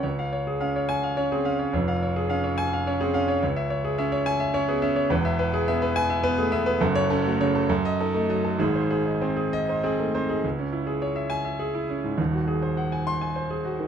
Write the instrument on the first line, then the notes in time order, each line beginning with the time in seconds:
grand piano
0.03 C#2 C#5
0.19 F5
0.33 C#5
0.47 G#4
0.60 C#4 F5
0.76 C#5
0.89 G#5
1.03 F5
1.17 C#4 C#5
1.32 C4 G#4
1.45 C#4 F5
1.59 C#5
1.73 F1 F2 C#5
1.88 F5
2.03 C#5
2.16 G#4
2.29 C#4 F5
2.44 C#5
2.58 G#5
2.73 F5
2.87 C#4 C#5
3.01 C4 G#4
3.14 C#4 F5
3.28 C#5
3.43 C#2 C#5
3.56 E5
3.70 C#5
3.85 G#4
3.98 C#4 E5
4.12 C#5
4.26 G#5
4.40 E5
4.54 C#4 C#5
4.68 B3 G#4
4.82 C#4 E5
4.96 C#5
5.10 E1 E2 B4
5.25 E5
5.39 B4
5.54 G#4
5.68 B3 E5
5.82 B4
5.96 G#5
6.10 E5
6.23 B3 B4
6.38 A3 G#4
6.52 B3 E5
6.66 B4
6.80 F#1 F#2 A4
6.95 C#5
7.10 C#4 A4
7.25 A3 F#4
7.41 C#3 C#5
7.55 A4
7.69 F#2 A4
7.85 D#5
8.00 D#4 A4
8.14 A3 D#4
8.29 F#3 D#5
8.44 A4
8.59 G#1 G#2 G#4
8.75 C5
8.90 G#4
9.05 D#4
9.21 C4 C5
9.37 G#4
9.53 D#5
9.69 D#4 C5
9.84 C4 G#4
9.99 A3 D#4
10.15 C4 C5
10.29 D#4 G#4
10.44 C#2
10.58 C#4
10.72 E4
10.87 G#4
11.02 C#5
11.16 E5
11.30 G#5
11.45 E5
11.59 G#4
11.75 E4
11.89 C#4
12.04 G#2
12.17 D#1 D#2
12.33 F#4
12.48 G#4
12.62 C5
12.77 F#5
12.92 G#5
13.07 C6
13.21 G#5
13.36 C5
13.50 G#4
13.65 F#4
13.79 D#3